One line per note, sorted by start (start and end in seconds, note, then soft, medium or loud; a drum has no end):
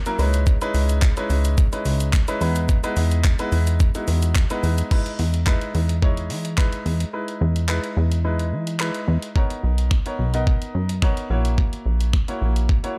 0.06 0.19 F#3 loud
0.06 0.19 A#3 medium
0.06 0.17 C#4 medium
0.06 0.18 E4 medium
0.06 0.19 A#4 loud
0.06 closed hi-hat medium
0.06 shaker medium
0.19 0.57 C#2 medium
0.19 0.55 G#3 medium
0.19 0.55 C#4 medium
0.19 0.55 D#4 medium
0.19 0.55 E4 medium
0.19 0.55 B4 loud
0.19 open hi-hat medium
0.19 shaker soft
0.34 closed hi-hat medium
0.34 shaker medium
0.47 kick loud
0.47 shaker medium
0.61 1.08 G#3 loud
0.61 1.08 C#4 medium
0.61 1.08 D#4 loud
0.61 1.08 E4 medium
0.61 1.08 B4 loud
0.61 closed hi-hat medium
0.61 shaker medium
0.74 1.13 C#2 medium
0.74 open hi-hat medium
0.74 shaker medium
0.89 closed hi-hat medium
0.89 shaker medium
1.02 kick loud
1.02 clap loud
1.02 shaker medium
1.17 1.64 G#3 loud
1.17 1.64 C#4 medium
1.17 1.64 D#4 medium
1.17 1.64 E4 medium
1.17 1.64 B4 loud
1.17 closed hi-hat medium
1.17 shaker medium
1.30 1.68 C#2 medium
1.30 open hi-hat medium
1.30 shaker medium
1.45 closed hi-hat medium
1.45 shaker medium
1.58 kick loud
1.58 shaker medium
1.72 2.19 G#3 medium
1.72 2.19 C#4 medium
1.72 2.19 D#4 medium
1.72 2.19 E4 medium
1.72 2.19 B4 loud
1.72 closed hi-hat medium
1.72 shaker medium
1.85 2.24 C#2 medium
1.85 open hi-hat medium
1.85 shaker medium
2.00 closed hi-hat medium
2.00 shaker medium
2.13 kick loud
2.13 clap loud
2.13 shaker medium
2.28 2.39 G#3 loud
2.28 2.41 C#4 medium
2.28 2.40 D#4 medium
2.28 2.40 E4 medium
2.28 2.40 B4 loud
2.28 closed hi-hat medium
2.28 shaker medium
2.41 2.80 E2 medium
2.41 2.77 G#3 medium
2.41 2.77 B3 medium
2.41 2.77 D#4 medium
2.41 2.77 E4 medium
2.41 2.77 B4 loud
2.41 open hi-hat medium
2.41 shaker soft
2.56 closed hi-hat medium
2.56 shaker medium
2.69 kick loud
2.69 shaker medium
2.83 3.30 G#3 loud
2.83 3.30 B3 medium
2.83 3.30 D#4 medium
2.83 3.30 E4 medium
2.83 3.30 B4 loud
2.83 closed hi-hat medium
2.83 shaker medium
2.96 3.35 E2 loud
2.96 open hi-hat medium
2.96 shaker medium
3.12 closed hi-hat medium
3.12 shaker medium
3.24 kick loud
3.24 clap loud
3.24 shaker medium
3.39 3.86 G#3 loud
3.39 3.86 B3 medium
3.39 3.86 D#4 medium
3.39 3.86 E4 medium
3.39 3.86 B4 loud
3.39 closed hi-hat medium
3.39 shaker medium
3.52 3.91 E2 medium
3.52 open hi-hat medium
3.52 shaker soft
3.67 closed hi-hat medium
3.67 shaker medium
3.80 kick loud
3.80 shaker medium
3.95 4.41 G#3 medium
3.95 4.41 B3 medium
3.95 4.42 D#4 medium
3.95 4.42 E4 medium
3.95 4.42 F#4 medium
3.95 closed hi-hat medium
3.95 shaker medium
4.08 4.46 E2 medium
4.08 open hi-hat medium
4.08 shaker medium
4.23 closed hi-hat medium
4.23 shaker medium
4.36 kick loud
4.36 clap loud
4.36 shaker medium
4.50 4.90 G#3 medium
4.50 4.91 B3 medium
4.50 4.90 D#4 medium
4.50 4.90 E4 medium
4.50 4.90 B4 loud
4.50 closed hi-hat medium
4.50 shaker medium
4.63 4.83 E2 loud
4.63 open hi-hat medium
4.63 shaker soft
4.78 closed hi-hat medium
4.78 shaker medium
4.91 5.39 G#3 medium
4.91 5.39 D#4 medium
4.91 5.39 E4 medium
4.91 5.39 B4 medium
4.91 kick loud
4.91 crash medium
5.06 closed hi-hat medium
5.19 5.58 E2 medium
5.19 open hi-hat medium
5.34 closed hi-hat medium
5.47 5.94 G#3 loud
5.47 5.94 D#4 medium
5.47 5.95 E4 medium
5.47 5.95 B4 loud
5.47 kick loud
5.47 clap loud
5.61 closed hi-hat soft
5.75 6.32 E2 loud
5.75 open hi-hat medium
5.89 closed hi-hat medium
6.02 6.50 G#3 loud
6.02 6.50 D#4 medium
6.02 6.50 E4 medium
6.02 6.50 C#5 loud
6.02 kick loud
6.17 closed hi-hat medium
6.30 6.69 E3 loud
6.30 open hi-hat medium
6.45 closed hi-hat medium
6.58 7.05 G#3 medium
6.58 7.05 D#4 medium
6.58 7.06 E4 medium
6.58 7.06 B4 loud
6.58 kick loud
6.58 clap loud
6.73 closed hi-hat medium
6.86 7.05 E2 medium
6.86 open hi-hat medium
7.00 closed hi-hat medium
7.13 7.61 G#3 medium
7.13 7.61 D#4 medium
7.13 7.61 E4 medium
7.13 7.61 B4 medium
7.28 closed hi-hat medium
7.41 7.80 E2 medium
7.56 closed hi-hat medium
7.69 8.17 G#3 medium
7.69 8.17 D#4 medium
7.69 8.17 E4 medium
7.69 8.17 B4 medium
7.69 clap loud
7.84 closed hi-hat medium
7.97 8.54 E2 loud
8.12 closed hi-hat medium
8.24 8.72 G#3 medium
8.24 8.72 D#4 medium
8.24 8.72 E4 medium
8.24 8.72 B4 medium
8.39 closed hi-hat medium
8.52 8.91 E3 loud
8.67 closed hi-hat medium
8.80 9.28 G#3 medium
8.80 9.28 D#4 medium
8.80 9.28 E4 medium
8.80 9.28 B4 loud
8.80 clap loud
8.94 closed hi-hat medium
9.08 9.18 E2 medium
9.22 closed hi-hat medium
9.36 9.95 B3 medium
9.36 9.95 D#4 medium
9.36 9.95 A#4 medium
9.36 9.95 C#5 medium
9.36 kick loud
9.50 closed hi-hat medium
9.64 10.02 B1 medium
9.78 closed hi-hat medium
9.91 finger snap loud
9.91 kick loud
10.06 10.29 B3 medium
10.06 10.29 D#4 medium
10.06 10.29 A#4 medium
10.06 10.29 C#5 medium
10.06 closed hi-hat soft
10.19 10.58 B1 medium
10.34 10.92 B3 medium
10.34 10.92 D#4 medium
10.34 10.93 A#4 medium
10.34 10.93 D#5 loud
10.34 closed hi-hat medium
10.47 kick loud
10.62 closed hi-hat medium
10.75 11.13 F#2 medium
10.89 closed hi-hat medium
11.02 11.26 B3 loud
11.02 11.26 D#4 medium
11.02 11.26 A#4 medium
11.02 11.26 C#5 loud
11.02 finger snap loud
11.02 kick loud
11.17 closed hi-hat medium
11.30 11.69 A#1 medium
11.30 12.13 A#3 medium
11.30 12.13 E4 medium
11.30 12.13 F#4 medium
11.30 12.13 C#5 medium
11.45 closed hi-hat medium
11.58 kick loud
11.73 closed hi-hat medium
11.86 12.24 A#1 medium
12.01 closed hi-hat medium
12.13 finger snap loud
12.13 kick loud
12.28 12.75 A#3 medium
12.28 12.75 E4 medium
12.28 12.75 F#4 medium
12.28 12.75 C#5 medium
12.28 closed hi-hat medium
12.41 12.80 A#1 medium
12.56 closed hi-hat medium
12.69 kick loud
12.84 12.95 A#3 medium
12.84 12.95 E4 medium
12.84 12.95 F#4 medium
12.84 12.95 C#5 loud
12.84 closed hi-hat medium